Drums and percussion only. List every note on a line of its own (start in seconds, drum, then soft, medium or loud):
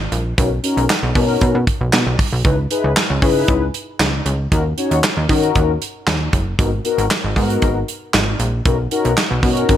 0.12 closed hi-hat medium
0.38 kick loud
0.38 closed hi-hat medium
0.64 closed hi-hat medium
0.78 closed hi-hat medium
0.90 snare loud
0.90 clap loud
0.90 closed hi-hat loud
1.15 kick loud
1.15 open hi-hat medium
1.41 kick loud
1.41 closed hi-hat medium
1.67 kick medium
1.67 closed hi-hat medium
1.93 snare loud
1.93 clap medium
1.93 closed hi-hat medium
2.19 kick loud
2.19 open hi-hat medium
2.45 kick loud
2.45 closed hi-hat medium
2.71 closed hi-hat medium
2.96 snare loud
2.96 clap loud
2.96 closed hi-hat medium
3.22 kick medium
3.22 open hi-hat medium
3.48 kick medium
3.48 closed hi-hat medium
3.74 closed hi-hat medium
4.00 snare loud
4.00 clap medium
4.00 closed hi-hat medium
4.26 closed hi-hat medium
4.52 kick loud
4.52 closed hi-hat medium
4.78 closed hi-hat medium
4.91 closed hi-hat medium
5.04 snare loud
5.04 clap loud
5.04 closed hi-hat medium
5.29 kick medium
5.29 open hi-hat medium
5.43 closed hi-hat medium
5.55 kick medium
5.55 closed hi-hat medium
5.82 closed hi-hat medium
6.07 snare loud
6.07 clap medium
6.07 closed hi-hat medium
6.33 kick medium
6.33 closed hi-hat medium
6.59 kick loud
6.59 closed hi-hat medium
6.85 closed hi-hat medium
6.98 closed hi-hat medium
7.11 snare loud
7.11 clap loud
7.11 closed hi-hat medium
7.36 kick medium
7.36 open hi-hat medium
7.50 closed hi-hat medium
7.62 kick loud
7.62 closed hi-hat medium
7.88 closed hi-hat medium
8.14 snare loud
8.14 clap medium
8.14 closed hi-hat medium
8.40 closed hi-hat medium
8.65 kick loud
8.65 closed hi-hat medium
8.91 closed hi-hat medium
9.05 closed hi-hat medium
9.17 snare loud
9.17 clap loud
9.17 closed hi-hat medium
9.43 kick medium
9.43 open hi-hat medium
9.57 closed hi-hat medium
9.69 kick medium
9.69 closed hi-hat medium